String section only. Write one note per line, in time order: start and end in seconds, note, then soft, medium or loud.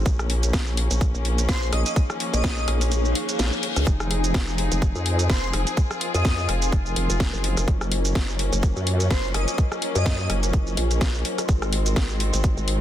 0.06 3.83 F3 medium
0.06 3.83 A#3 medium
0.06 3.83 C#4 medium
3.87 7.64 F3 medium
3.87 7.64 C4 medium
3.87 5.75 D#4 medium
3.87 7.64 G#4 medium
5.77 7.66 F4 medium
7.68 11.45 F#3 medium
7.68 11.45 A#3 medium
7.68 11.45 C#4 loud
11.49 12.81 D#3 medium
11.49 12.81 G#3 medium
11.49 12.81 C4 medium